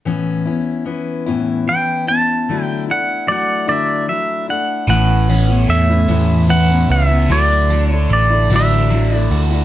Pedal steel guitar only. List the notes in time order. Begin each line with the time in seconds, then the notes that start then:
1.69 G5
2.08 A5
2.63 G5
2.91 F#5
3.28 D5 F#5
3.69 D5 E5
4.09 E5
4.50 F#5
4.90 F#5
5.70 E5
6.50 F#5
6.92 E5
7.32 D5
7.88 C#5
8.13 D5
8.56 E5
9.16 D5